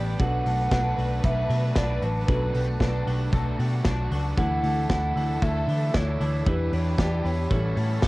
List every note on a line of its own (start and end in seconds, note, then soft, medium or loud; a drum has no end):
0.00 0.15 A1 medium
0.00 0.18 E3 medium
0.00 0.15 B3 medium
0.00 0.19 B3 medium
0.00 0.45 B3 medium
0.00 0.15 D4 medium
0.00 0.19 D4 medium
0.00 0.71 D4 medium
0.00 0.15 E4 medium
0.00 0.15 G4 medium
0.00 0.19 G4 medium
0.00 0.24 G4 medium
0.00 0.15 D5 medium
0.00 0.19 D5 loud
0.00 0.18 G5 medium
0.00 0.15 E6 loud
0.18 0.41 B1 loud
0.18 0.45 B2 medium
0.18 0.96 F#3 medium
0.18 0.45 F#3 medium
0.18 0.46 A3 medium
0.18 2.24 B3 medium
0.18 2.24 D4 medium
0.18 0.45 D4 medium
0.18 2.24 F#4 medium
0.18 0.43 F#4 medium
0.18 2.24 A4 medium
0.18 4.33 B4 medium
0.18 2.81 B4 loud
0.18 1.20 F#5 loud
0.18 4.33 A5 medium
0.18 kick loud
0.18 closed hi-hat medium
0.44 0.67 B1 loud
0.44 1.23 A3 medium
0.44 0.71 A3 soft
0.44 0.72 D4 medium
0.44 0.71 F#4 medium
0.44 open hi-hat medium
0.71 0.93 B1 loud
0.71 0.97 F#3 medium
0.71 0.98 A3 medium
0.71 1.76 D4 medium
0.71 0.97 D4 medium
0.71 0.95 F#4 medium
0.71 kick loud
0.71 snare loud
0.71 closed hi-hat medium
0.97 1.19 B1 medium
0.97 1.48 F#3 medium
0.97 1.23 A3 medium
0.97 1.23 D4 medium
0.97 1.23 F#4 medium
0.97 open hi-hat medium
1.23 1.45 B1 loud
1.23 1.49 B2 medium
1.23 1.50 F#3 medium
1.23 2.55 A3 medium
1.23 1.50 A3 medium
1.23 1.49 D4 medium
1.23 1.47 F#4 loud
1.23 1.73 E5 loud
1.23 kick loud
1.23 closed hi-hat medium
1.49 1.71 B2 loud
1.49 2.01 F#3 medium
1.49 1.75 A3 soft
1.49 1.76 D4 medium
1.49 1.75 F#4 medium
1.49 open hi-hat medium
1.75 1.97 B1 loud
1.75 2.01 F#3 medium
1.75 2.02 A3 medium
1.75 2.81 D4 medium
1.75 2.01 D4 medium
1.75 2.00 F#4 medium
1.75 2.05 D5 loud
1.75 kick loud
1.75 snare loud
1.75 closed hi-hat medium
2.01 2.23 A1 loud
2.01 2.27 F#3 medium
2.01 2.28 A3 soft
2.01 2.28 D4 medium
2.01 2.28 F#4 medium
2.01 3.86 B4 loud
2.01 open hi-hat medium
2.28 2.50 B1 loud
2.28 2.54 B2 medium
2.28 2.54 F#3 medium
2.28 3.06 F#3 medium
2.28 2.55 A3 medium
2.28 4.33 B3 medium
2.28 4.33 D4 medium
2.28 2.54 D4 medium
2.28 4.33 F#4 medium
2.28 2.52 F#4 medium
2.28 4.33 A4 medium
2.28 kick loud
2.28 closed hi-hat medium
2.53 2.76 B1 loud
2.53 2.67 G3 medium
2.53 2.80 A3 soft
2.53 2.81 D4 medium
2.53 2.80 F#4 medium
2.53 open hi-hat medium
2.67 3.32 A3 medium
2.79 3.02 B1 loud
2.79 3.06 F#3 medium
2.79 3.07 A3 medium
2.79 3.85 D4 medium
2.79 3.06 D4 medium
2.79 3.04 F#4 medium
2.79 3.07 A4 loud
2.79 kick loud
2.79 snare loud
2.79 closed hi-hat medium
3.05 3.28 B1 medium
3.05 3.58 F#3 medium
3.05 3.31 A3 medium
3.05 3.32 D4 medium
3.05 3.32 F#4 medium
3.05 3.33 G4 medium
3.05 open hi-hat medium
3.31 3.54 B1 loud
3.31 3.58 B2 loud
3.31 3.58 F#3 medium
3.31 3.59 A3 medium
3.31 4.63 A3 medium
3.31 3.58 D4 loud
3.31 3.59 F#4 loud
3.31 3.56 F#4 loud
3.31 kick loud
3.31 closed hi-hat medium
3.58 3.80 B2 loud
3.58 4.10 F#3 medium
3.58 3.83 A3 medium
3.58 3.84 D4 medium
3.58 3.84 F#4 medium
3.58 3.85 G4 medium
3.58 open hi-hat medium
3.83 4.06 B1 loud
3.83 4.10 F#3 medium
3.83 4.11 A3 medium
3.83 4.90 D4 medium
3.83 4.11 D4 medium
3.83 4.31 F#4 loud
3.83 4.09 F#4 medium
3.83 kick loud
3.83 snare loud
3.83 closed hi-hat medium
4.10 4.32 C#2 loud
4.10 4.37 F#3 medium
4.10 4.36 A3 medium
4.10 4.36 D4 medium
4.10 4.37 F#4 medium
4.10 open hi-hat medium
4.31 4.38 B4 medium
4.36 4.59 D2 loud
4.36 4.63 D3 medium
4.36 5.16 E3 medium
4.36 4.63 A3 medium
4.36 6.42 A3 medium
4.36 6.43 D4 medium
4.36 4.63 D4 medium
4.36 6.43 E4 medium
4.36 4.61 E4 medium
4.36 6.42 A4 medium
4.36 6.45 A4 medium
4.36 4.89 A4 loud
4.36 7.48 E5 medium
4.36 4.86 F#5 loud
4.36 kick loud
4.36 closed hi-hat medium
4.63 4.85 D2 loud
4.63 5.41 A3 medium
4.63 4.89 A3 medium
4.63 4.90 D4 medium
4.63 4.89 E4 medium
4.63 open hi-hat medium
4.89 5.11 D2 loud
4.89 5.15 D3 medium
4.89 5.16 A3 medium
4.89 5.16 D4 medium
4.89 5.94 E4 medium
4.89 5.14 E4 medium
4.89 6.36 A4 loud
4.89 5.43 F#5 loud
4.89 kick loud
4.89 snare loud
4.89 closed hi-hat medium
5.15 5.37 D2 medium
5.15 5.68 E3 medium
5.15 5.42 A3 soft
5.15 5.43 D4 medium
5.15 5.42 E4 medium
5.15 open hi-hat medium
5.42 5.63 D2 loud
5.42 5.68 D3 medium
5.42 6.52 A3 medium
5.42 5.69 A3 loud
5.42 5.68 D4 medium
5.42 5.66 E4 loud
5.42 5.97 E5 loud
5.42 kick loud
5.42 closed hi-hat medium
5.68 5.89 D3 loud
5.68 6.20 E3 medium
5.68 5.93 A3 medium
5.68 5.94 D4 medium
5.68 5.94 E4 medium
5.68 open hi-hat medium
5.93 6.16 D2 loud
5.93 6.20 D3 medium
5.93 6.20 A3 medium
5.93 6.20 D4 medium
5.93 6.72 E4 medium
5.93 6.19 E4 medium
5.93 6.49 C#5 loud
5.93 kick loud
5.93 snare loud
5.93 closed hi-hat medium
6.20 6.42 D2 loud
6.20 6.46 E3 medium
6.20 6.46 A3 soft
6.20 6.46 D4 medium
6.20 6.46 E4 medium
6.20 open hi-hat medium
6.40 6.47 A4 medium
6.46 6.68 E2 loud
6.46 6.72 E3 medium
6.46 7.50 E3 loud
6.46 6.73 G3 medium
6.46 7.49 B3 medium
6.46 7.49 D4 medium
6.46 6.73 D4 medium
6.46 7.49 E4 medium
6.46 6.72 E4 medium
6.46 7.50 G4 medium
6.46 7.49 G4 medium
6.46 7.51 G4 loud
6.46 6.75 B4 medium
6.46 6.71 B4 loud
6.46 kick loud
6.46 closed hi-hat medium
6.72 6.94 E2 loud
6.72 7.56 D4 medium
6.72 6.98 D4 medium
6.72 6.99 E4 medium
6.72 6.98 B4 medium
6.72 7.01 C#5 medium
6.72 open hi-hat medium
6.98 7.20 E2 loud
6.98 7.24 G3 medium
6.98 7.25 D4 medium
6.98 7.24 E4 medium
6.98 7.56 G4 medium
6.98 7.22 B4 medium
6.98 7.27 D5 medium
6.98 kick loud
6.98 snare loud
6.98 closed hi-hat medium
7.23 7.46 E2 loud
7.23 7.56 B3 medium
7.23 7.51 D4 soft
7.23 7.50 E4 medium
7.23 7.50 B4 medium
7.23 8.08 C#5 medium
7.23 open hi-hat medium
7.49 7.73 A1 loud
7.49 7.76 A2 medium
7.49 7.77 E3 medium
7.49 8.08 E3 medium
7.49 7.77 G3 medium
7.49 8.08 G3 medium
7.49 8.08 A3 medium
7.49 7.76 C#4 medium
7.49 8.08 C#4 medium
7.49 7.76 E4 medium
7.49 8.08 E4 medium
7.49 8.03 F#4 loud
7.49 8.08 A4 medium
7.49 7.74 A4 loud
7.49 8.08 A5 medium
7.49 8.08 C#6 medium
7.49 kick loud
7.49 closed hi-hat medium
7.76 7.98 A2 medium
7.76 8.01 G3 soft
7.76 8.08 A3 medium
7.76 8.02 C#4 medium
7.76 8.03 E4 medium
7.76 8.03 A4 medium
7.76 open hi-hat medium
8.02 8.08 A1 loud
8.02 8.08 G3 medium
8.02 8.08 C#4 medium
8.02 8.08 E4 medium
8.02 8.08 G4 medium
8.02 kick loud
8.02 snare loud
8.02 closed hi-hat medium